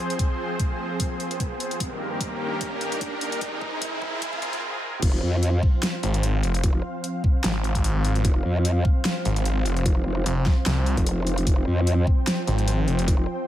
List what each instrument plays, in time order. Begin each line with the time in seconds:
Already playing: supersaw synth F3 C4 G#4 C5, riser
0.10 closed hi-hat
0.19 kick, closed hi-hat
0.59 kick, closed hi-hat
1.00 kick, closed hi-hat
1.20 closed hi-hat
1.31 closed hi-hat
1.40 kick, closed hi-hat
1.60 closed hi-hat
1.71 closed hi-hat
1.80 supersaw synth G2 D#3 A#3 G4 A#4, kick, closed hi-hat
2.21 kick, closed hi-hat
2.61 kick, closed hi-hat
2.81 closed hi-hat
2.92 closed hi-hat
3.01 kick, closed hi-hat
3.21 closed hi-hat
3.32 closed hi-hat
3.41 supersaw synth C4 G#4, kick, closed hi-hat
3.62 kick
3.82 kick, closed hi-hat
4.02 kick
4.22 kick, closed hi-hat
4.33 kick
4.42 kick, closed hi-hat
4.53 kick, closed hi-hat
5.02 wobble bass F1, supersaw synth F3 C4 C5 F5, kick, closed hi-hat, crash
5.23 wobble bass F2
5.43 closed hi-hat
5.63 kick
5.83 snare, closed hi-hat
6.03 detuned saw bass G#1, closed hi-hat
6.14 closed hi-hat
6.23 closed hi-hat
6.43 detuned saw bass F1, closed hi-hat
6.54 closed hi-hat
6.64 wobble bass F1, kick, closed hi-hat
7.04 closed hi-hat
7.24 kick
7.44 detuned saw bass G#1, snare, closed hi-hat
7.64 closed hi-hat
7.75 kick, closed hi-hat
7.84 closed hi-hat
8.04 closed hi-hat
8.15 closed hi-hat
8.25 wobble bass F1, kick, closed hi-hat
8.45 wobble bass F2
8.65 closed hi-hat
8.85 kick
9.05 snare, closed hi-hat
9.25 detuned saw bass G#1, closed hi-hat
9.36 closed hi-hat
9.45 closed hi-hat
9.66 detuned saw bass F1, closed hi-hat
9.77 closed hi-hat
9.86 wobble bass F1, kick, closed hi-hat
10.06 wobble bass F1
10.26 detuned saw bass F1, closed hi-hat
10.46 kick, snare
10.66 detuned saw bass C2, snare, closed hi-hat
10.86 closed hi-hat
10.97 wobble bass F1, kick, closed hi-hat
11.06 closed hi-hat
11.27 closed hi-hat
11.38 closed hi-hat
11.47 wobble bass F1, supersaw synth G5, kick, closed hi-hat
11.67 wobble bass F2
11.87 closed hi-hat
12.07 kick
12.27 snare, closed hi-hat
12.47 detuned saw bass G#1, closed hi-hat
12.58 closed hi-hat
12.68 closed hi-hat
12.88 detuned saw bass F1, closed hi-hat
12.99 closed hi-hat
13.08 wobble bass F1, kick, closed hi-hat